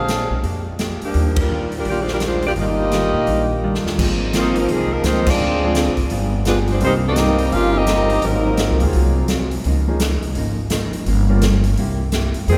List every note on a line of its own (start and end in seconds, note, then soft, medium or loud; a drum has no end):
0.00 0.26 A#1 medium
0.00 0.42 D4 medium
0.00 0.42 G#4 medium
0.00 0.42 C5 medium
0.00 0.42 F5 medium
0.08 0.32 A#2 medium
0.08 0.32 G#3 medium
0.08 0.32 D4 medium
0.08 0.33 G4 medium
0.08 snare medium
0.08 closed hi-hat medium
0.30 0.43 B1 medium
0.43 0.98 F2 medium
0.43 0.67 A#2 soft
0.43 0.68 G#3 soft
0.43 0.68 D4 medium
0.43 0.68 G4 soft
0.43 open hi-hat soft
0.79 1.03 A#2 medium
0.79 1.03 G#3 medium
0.79 1.03 D4 medium
0.79 1.04 G4 medium
0.79 snare medium
0.79 closed hi-hat medium
1.02 1.36 F3 medium
1.02 1.35 A#3 medium
1.02 1.36 D4 medium
1.02 1.36 G4 medium
1.02 muted upright bass stroke soft
1.02 open hi-hat soft
1.14 1.69 D#2 medium
1.14 1.38 D#3 soft
1.14 1.39 G3 soft
1.14 1.39 D4 soft
1.14 1.39 F4 soft
1.14 open hi-hat soft
1.36 1.72 G3 medium
1.36 1.72 F4 medium
1.36 kick medium
1.36 ride medium
1.40 1.72 D4 medium
1.40 1.72 A#4 medium
1.52 1.75 D#3 medium
1.52 1.75 G3 medium
1.52 1.75 D4 medium
1.52 1.75 F4 medium
1.72 muted upright bass stroke soft
1.72 open hi-hat soft
1.78 1.88 G3 medium
1.78 1.88 D4 medium
1.78 1.88 F4 medium
1.78 1.88 A#4 medium
1.85 2.53 A#1 medium
1.85 2.09 D#3 soft
1.85 2.10 G3 soft
1.85 2.10 D4 soft
1.85 2.10 F4 soft
1.85 1.98 G4 medium
1.85 1.99 D5 medium
1.85 open hi-hat soft
1.89 1.99 A#3 medium
1.89 1.99 F4 medium
2.01 2.11 G#3 medium
2.01 2.11 D4 medium
2.01 2.11 F4 medium
2.01 2.12 C5 medium
2.08 snare medium
2.13 2.23 G3 medium
2.13 2.22 D4 medium
2.13 2.23 F4 medium
2.13 2.23 A#4 medium
2.20 2.45 D#3 medium
2.20 2.45 G3 medium
2.20 2.45 D4 medium
2.20 2.45 F4 medium
2.20 snare medium
2.20 closed hi-hat medium
2.26 2.46 G#3 medium
2.26 2.46 D4 medium
2.26 2.46 F4 medium
2.26 2.46 C5 medium
2.42 open hi-hat soft
2.47 2.52 A#3 medium
2.47 2.53 F4 medium
2.47 2.53 G4 medium
2.47 2.52 D5 medium
2.56 3.10 G1 medium
2.56 2.80 D#3 soft
2.56 2.77 D#3 medium
2.56 2.80 G3 soft
2.56 2.77 G3 soft
2.56 3.61 G3 medium
2.56 3.60 A#3 medium
2.56 2.81 D4 soft
2.56 2.77 D4 soft
2.56 3.60 D#4 medium
2.56 2.77 F4 medium
2.56 2.81 F4 medium
2.56 open hi-hat soft
2.61 3.62 A#3 medium
2.61 3.61 F4 medium
2.61 3.61 G4 medium
2.61 3.61 D#5 loud
2.92 3.16 D#3 medium
2.92 3.16 G3 medium
2.92 3.17 D4 medium
2.92 3.17 F4 medium
2.92 snare medium
2.92 closed hi-hat medium
3.14 3.27 A#2 medium
3.27 3.81 A#1 medium
3.27 3.51 D#3 medium
3.27 3.51 G3 medium
3.27 3.52 D4 soft
3.27 3.52 F4 soft
3.27 open hi-hat soft
3.63 3.87 D#3 medium
3.63 3.99 D#3 soft
3.63 3.87 G3 medium
3.63 3.99 G3 soft
3.63 3.87 D4 medium
3.63 3.99 D4 soft
3.63 3.87 F4 medium
3.63 3.99 F4 medium
3.75 snare medium
3.84 3.97 D#2 medium
3.84 snare medium
3.98 4.66 G#1 medium
3.98 4.22 G#2 medium
3.98 4.33 F3 medium
3.98 4.23 F3 medium
3.98 4.33 A#3 soft
3.98 4.23 A#3 medium
3.98 4.33 C4 soft
3.98 4.23 C4 medium
3.98 4.33 D#4 soft
3.98 4.33 G#4 medium
3.98 kick medium
3.98 crash medium
4.33 4.58 G#2 medium
4.33 4.56 D#3 medium
4.33 4.58 F3 medium
4.33 4.88 F3 medium
4.33 4.56 F3 medium
4.33 4.88 A#3 medium
4.33 4.58 A#3 medium
4.33 4.57 A#3 medium
4.33 4.88 C4 medium
4.33 4.56 C4 medium
4.33 4.59 C4 medium
4.33 4.88 D#4 medium
4.33 4.88 F4 medium
4.33 snare medium
4.33 closed hi-hat medium
4.38 4.57 D#4 medium
4.38 4.57 F4 medium
4.38 4.57 C5 medium
4.56 4.70 D#3 medium
4.56 4.70 F3 medium
4.56 4.70 A#3 medium
4.56 4.69 D#4 medium
4.56 4.71 A#4 medium
4.56 open hi-hat soft
4.60 4.70 F3 medium
4.60 4.70 C4 medium
4.69 5.02 C2 medium
4.69 4.93 G#2 soft
4.69 4.92 D#3 medium
4.69 4.94 F3 soft
4.69 4.90 F3 medium
4.69 4.91 F3 medium
4.69 4.93 G#3 medium
4.69 4.94 A#3 soft
4.69 4.90 C4 medium
4.69 4.94 C4 soft
4.69 4.90 D#4 medium
4.69 4.92 G#4 medium
4.69 open hi-hat soft
4.91 5.02 D#3 medium
4.91 5.05 F3 medium
4.91 5.03 F3 medium
4.91 5.06 A#3 medium
4.91 5.05 C4 medium
4.91 5.04 D#4 medium
4.91 5.05 A#4 medium
5.03 5.37 C#2 medium
5.03 5.29 G#2 medium
5.03 5.27 D#3 medium
5.03 5.26 F3 medium
5.03 5.29 F3 medium
5.03 5.28 A#3 medium
5.03 5.29 A#3 medium
5.03 5.27 C4 medium
5.03 5.29 C4 medium
5.03 5.28 D#4 medium
5.03 5.26 F4 medium
5.03 5.28 C5 loud
5.03 snare medium
5.03 closed hi-hat medium
5.27 5.98 F3 medium
5.27 5.98 G#3 medium
5.27 5.99 C4 medium
5.27 5.98 D4 medium
5.27 5.98 F4 medium
5.27 5.99 G#4 medium
5.27 5.99 D5 medium
5.27 kick medium
5.27 crash medium
5.40 5.84 D2 medium
5.40 5.64 D3 soft
5.40 5.65 G#3 soft
5.40 5.65 C4 medium
5.40 5.65 F4 medium
5.63 5.75 F3 medium
5.63 5.75 G#3 medium
5.63 5.75 C4 medium
5.63 5.75 D4 medium
5.63 5.75 G#4 medium
5.75 5.99 D3 medium
5.75 5.99 G#3 medium
5.75 6.00 C4 medium
5.75 6.00 F4 medium
5.75 snare medium
5.75 closed hi-hat medium
5.88 5.98 C2 medium
5.97 6.10 F#1 medium
5.97 kick medium
5.97 open hi-hat soft
6.10 6.78 G1 medium
6.10 6.35 G3 soft
6.10 6.35 B3 medium
6.10 6.35 F4 medium
6.10 6.36 G#4 medium
6.10 open hi-hat soft
6.45 6.57 D3 medium
6.45 6.67 F3 medium
6.45 6.57 F3 medium
6.45 6.70 G3 medium
6.45 6.67 G#3 medium
6.45 6.57 G#3 medium
6.45 6.67 B3 soft
6.45 6.57 B3 medium
6.45 6.71 B3 medium
6.45 6.67 D4 soft
6.45 6.58 D4 medium
6.45 6.57 F4 medium
6.45 6.71 F4 medium
6.45 6.67 G4 medium
6.45 6.71 G#4 medium
6.45 6.57 B4 medium
6.45 snare medium
6.45 closed hi-hat medium
6.67 6.80 C4 medium
6.67 open hi-hat soft
6.72 6.83 G#3 medium
6.72 6.83 D4 medium
6.72 6.83 F4 medium
6.72 6.83 C5 medium
6.81 7.49 C2 medium
6.81 7.06 C3 medium
6.81 6.91 D#3 medium
6.81 7.02 G3 medium
6.81 6.92 G3 medium
6.81 7.07 G3 medium
6.81 7.02 A#3 medium
6.81 6.94 A#3 medium
6.81 6.91 C4 medium
6.81 7.02 C4 medium
6.81 7.02 D#4 medium
6.81 7.03 A#4 medium
6.81 6.94 C5 loud
6.81 open hi-hat soft
6.85 7.07 A#3 medium
6.85 6.94 D#4 medium
6.85 7.07 D#4 medium
6.85 6.94 G4 medium
7.05 7.50 G3 medium
7.05 7.50 A#3 medium
7.05 7.52 C4 medium
7.05 7.50 D#4 medium
7.05 7.51 G4 medium
7.05 7.51 A#4 medium
7.05 7.52 D#5 medium
7.16 7.42 C3 medium
7.16 7.42 G3 medium
7.16 7.42 A#3 medium
7.16 snare medium
7.16 closed hi-hat medium
7.21 7.43 D#4 medium
7.39 open hi-hat soft
7.52 8.20 G1 medium
7.52 7.77 C3 soft
7.52 7.77 G3 soft
7.52 7.77 A#3 soft
7.52 7.76 C#4 medium
7.52 7.78 D#4 medium
7.52 7.76 F4 medium
7.52 7.76 G4 medium
7.52 7.76 A#4 medium
7.52 7.76 F5 loud
7.52 open hi-hat soft
7.74 8.23 G3 medium
7.74 8.23 A#3 medium
7.74 8.23 D#4 medium
7.78 8.25 C4 loud
7.78 8.25 G4 medium
7.78 8.24 A#4 medium
7.78 8.25 D#5 loud
7.87 8.12 C3 medium
7.87 8.12 G3 medium
7.87 8.12 A#3 medium
7.87 8.13 D#4 medium
7.87 snare medium
7.87 closed hi-hat medium
8.10 open hi-hat soft
8.22 8.67 G#1 medium
8.22 8.47 G#2 soft
8.22 8.95 D#3 medium
8.22 8.48 F#3 medium
8.22 8.95 F#3 medium
8.22 8.95 A#3 medium
8.22 8.48 C4 medium
8.22 8.95 D#4 medium
8.22 8.48 F4 medium
8.22 8.95 A#4 medium
8.22 open hi-hat soft
8.26 8.96 F#3 medium
8.26 8.96 C4 medium
8.57 8.82 G#2 medium
8.57 8.83 F#3 medium
8.57 8.83 C4 medium
8.57 8.83 F4 medium
8.57 snare medium
8.57 closed hi-hat medium
8.71 8.82 C2 medium
8.80 8.94 D#2 medium
8.80 9.27 F#3 medium
8.80 9.27 A#3 medium
8.80 9.27 C4 medium
8.80 9.27 F4 medium
8.80 9.28 G#4 medium
8.80 open hi-hat soft
8.93 9.62 C2 medium
8.93 9.18 G#2 medium
8.93 9.19 F#3 soft
8.93 9.19 C4 medium
8.93 9.19 F4 medium
8.93 open hi-hat soft
9.28 9.54 G#2 medium
9.28 9.54 F#3 medium
9.28 9.54 C4 medium
9.28 9.54 F4 medium
9.28 snare medium
9.28 closed hi-hat medium
9.51 open hi-hat soft
9.64 10.19 C#2 medium
9.64 9.89 C#3 medium
9.64 9.90 F3 medium
9.64 9.90 A#3 medium
9.64 9.90 D#4 medium
9.64 open hi-hat soft
9.87 9.99 F3 medium
9.87 9.99 A#3 medium
9.87 10.00 C#4 medium
9.87 10.00 D#4 medium
9.87 10.00 G#4 medium
10.00 10.24 C#3 medium
10.00 10.24 F3 medium
10.00 10.25 A#3 medium
10.00 10.25 D#4 medium
10.00 snare medium
10.00 closed hi-hat medium
10.23 10.35 C2 medium
10.23 open hi-hat soft
10.35 11.03 G#1 medium
10.35 10.60 C#3 medium
10.35 10.60 F3 soft
10.35 10.61 A#3 medium
10.35 10.61 D#4 medium
10.35 open hi-hat soft
10.70 10.95 C#3 medium
10.70 10.95 F3 medium
10.70 10.96 A#3 medium
10.70 10.96 D#4 medium
10.70 snare medium
10.70 closed hi-hat medium
10.93 open hi-hat soft
11.06 11.74 G1 medium
11.06 11.30 G2 medium
11.06 11.31 F3 medium
11.06 11.31 A#3 medium
11.06 11.31 C#4 medium
11.06 open hi-hat medium
11.29 11.41 G3 medium
11.29 11.41 A#3 medium
11.29 11.41 C#4 medium
11.29 11.41 F4 medium
11.29 11.41 A#4 medium
11.42 11.66 G2 medium
11.42 11.66 F3 medium
11.42 11.66 A#3 medium
11.42 11.67 C#4 medium
11.42 snare medium
11.42 closed hi-hat medium
11.64 open hi-hat soft
11.76 12.30 C2 medium
11.76 12.02 C3 soft
11.76 12.02 A#3 medium
11.76 12.02 E4 medium
11.76 open hi-hat soft
11.80 12.03 G4 medium
12.12 12.37 C3 medium
12.12 12.37 A#3 medium
12.12 12.37 E4 medium
12.12 12.38 G4 medium
12.12 snare medium
12.12 closed hi-hat medium
12.34 12.46 F#2 medium
12.34 open hi-hat soft
12.47 12.58 F2 medium
12.47 12.58 C3 medium
12.47 12.58 D#3 medium
12.47 12.58 F3 soft
12.47 12.58 G#3 medium
12.47 12.58 A#3 medium
12.47 12.58 C4 medium
12.47 12.58 G4 medium
12.47 12.58 G#4 loud
12.47 open hi-hat medium
12.51 12.58 D#4 medium
12.51 12.58 G#4 medium